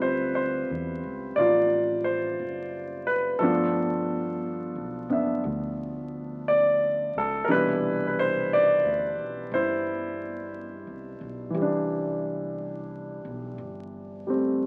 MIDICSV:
0, 0, Header, 1, 3, 480
1, 0, Start_track
1, 0, Key_signature, 0, "major"
1, 0, Tempo, 1018676
1, 1607, Time_signature, 4, 2, 24, 8
1, 6910, End_track
2, 0, Start_track
2, 0, Title_t, "Grand piano"
2, 0, Program_c, 0, 0
2, 0, Control_c, 0, 64, 127
2, 0, Note_on_c, 0, 55, 39
2, 0, Note_on_c, 0, 60, 38
2, 0, Note_on_c, 0, 65, 44
2, 0, Note_on_c, 0, 71, 66
2, 0, Note_on_c, 0, 76, 47
2, 7, Note_on_c, 0, 72, 69
2, 155, Note_off_c, 0, 72, 0
2, 166, Note_on_c, 0, 72, 65
2, 640, Note_on_c, 0, 74, 67
2, 647, Note_off_c, 0, 65, 0
2, 654, Note_on_c, 0, 65, 52
2, 662, Note_off_c, 0, 72, 0
2, 963, Note_on_c, 0, 72, 64
2, 977, Note_off_c, 0, 74, 0
2, 1445, Note_off_c, 0, 71, 0
2, 1445, Note_on_c, 0, 71, 62
2, 1461, Note_off_c, 0, 72, 0
2, 1591, Note_off_c, 0, 65, 0
2, 1597, Note_on_c, 0, 69, 59
2, 1605, Note_on_c, 0, 53, 45
2, 1606, Note_off_c, 0, 55, 0
2, 1607, Note_on_c, 0, 57, 40
2, 1609, Note_off_c, 0, 71, 0
2, 1613, Note_off_c, 0, 60, 0
2, 1613, Note_on_c, 0, 62, 48
2, 1613, Note_on_c, 0, 65, 43
2, 1614, Control_c, 0, 64, 0
2, 1614, Note_on_c, 0, 59, 41
2, 1615, Note_off_c, 0, 76, 0
2, 1700, Control_c, 0, 64, 127
2, 2384, Note_off_c, 0, 69, 0
2, 2394, Note_off_c, 0, 59, 0
2, 2398, Note_off_c, 0, 62, 0
2, 2401, Note_on_c, 0, 59, 37
2, 2405, Note_on_c, 0, 62, 35
2, 2415, Note_on_c, 0, 76, 40
2, 2548, Note_off_c, 0, 65, 0
2, 3054, Note_on_c, 0, 74, 75
2, 3352, Note_off_c, 0, 74, 0
2, 3382, Note_on_c, 0, 69, 69
2, 3500, Note_off_c, 0, 69, 0
2, 3508, Note_on_c, 0, 70, 58
2, 3520, Note_off_c, 0, 53, 0
2, 3520, Note_off_c, 0, 59, 0
2, 3521, Note_off_c, 0, 57, 0
2, 3522, Note_off_c, 0, 62, 0
2, 3525, Note_on_c, 0, 55, 37
2, 3526, Note_off_c, 0, 70, 0
2, 3526, Note_on_c, 0, 52, 43
2, 3527, Note_off_c, 0, 76, 0
2, 3528, Control_c, 0, 64, 0
2, 3529, Note_on_c, 0, 47, 37
2, 3530, Note_on_c, 0, 62, 43
2, 3538, Note_on_c, 0, 64, 53
2, 3540, Note_on_c, 0, 71, 73
2, 3596, Control_c, 0, 64, 127
2, 3797, Note_off_c, 0, 71, 0
2, 3804, Note_on_c, 0, 71, 56
2, 3846, Note_off_c, 0, 71, 0
2, 3861, Note_on_c, 0, 72, 76
2, 4014, Note_off_c, 0, 72, 0
2, 4021, Note_on_c, 0, 74, 77
2, 4470, Note_off_c, 0, 64, 0
2, 4494, Note_on_c, 0, 72, 66
2, 4498, Note_on_c, 0, 64, 49
2, 4504, Note_off_c, 0, 74, 0
2, 5413, Note_off_c, 0, 52, 0
2, 5420, Note_on_c, 0, 52, 44
2, 5433, Note_off_c, 0, 55, 0
2, 5440, Note_on_c, 0, 55, 39
2, 5443, Note_off_c, 0, 47, 0
2, 5444, Note_off_c, 0, 62, 0
2, 5474, Note_on_c, 0, 62, 49
2, 6716, Note_off_c, 0, 55, 0
2, 6723, Note_on_c, 0, 55, 35
2, 6731, Note_on_c, 0, 57, 33
2, 6737, Note_on_c, 0, 60, 41
2, 6874, Note_off_c, 0, 72, 0
2, 6875, Note_off_c, 0, 64, 0
2, 6910, Note_off_c, 0, 52, 0
2, 6910, Note_off_c, 0, 55, 0
2, 6910, Note_off_c, 0, 57, 0
2, 6910, Note_off_c, 0, 60, 0
2, 6910, Note_off_c, 0, 62, 0
2, 6910, End_track
3, 0, Start_track
3, 0, Title_t, "Upright bass"
3, 0, Program_c, 1, 32
3, 0, Note_on_c, 1, 38, 67
3, 310, Note_off_c, 1, 38, 0
3, 330, Note_on_c, 1, 40, 52
3, 478, Note_off_c, 1, 40, 0
3, 489, Note_on_c, 1, 37, 57
3, 637, Note_off_c, 1, 37, 0
3, 646, Note_on_c, 1, 33, 68
3, 1108, Note_off_c, 1, 33, 0
3, 1128, Note_on_c, 1, 30, 58
3, 1588, Note_off_c, 1, 30, 0
3, 1602, Note_on_c, 1, 31, 69
3, 2224, Note_off_c, 1, 31, 0
3, 2241, Note_on_c, 1, 35, 54
3, 2391, Note_off_c, 1, 35, 0
3, 2401, Note_on_c, 1, 30, 62
3, 2551, Note_off_c, 1, 30, 0
3, 2563, Note_on_c, 1, 38, 69
3, 3346, Note_off_c, 1, 38, 0
3, 3366, Note_on_c, 1, 37, 55
3, 3511, Note_off_c, 1, 37, 0
3, 3523, Note_on_c, 1, 36, 72
3, 4143, Note_off_c, 1, 36, 0
3, 4161, Note_on_c, 1, 38, 54
3, 4310, Note_off_c, 1, 38, 0
3, 4327, Note_on_c, 1, 35, 56
3, 4473, Note_off_c, 1, 35, 0
3, 4484, Note_on_c, 1, 31, 70
3, 5102, Note_off_c, 1, 31, 0
3, 5122, Note_on_c, 1, 36, 51
3, 5270, Note_off_c, 1, 36, 0
3, 5281, Note_on_c, 1, 35, 53
3, 5429, Note_off_c, 1, 35, 0
3, 5439, Note_on_c, 1, 36, 72
3, 6226, Note_off_c, 1, 36, 0
3, 6243, Note_on_c, 1, 35, 61
3, 6390, Note_off_c, 1, 35, 0
3, 6400, Note_on_c, 1, 31, 67
3, 6910, Note_off_c, 1, 31, 0
3, 6910, End_track
0, 0, End_of_file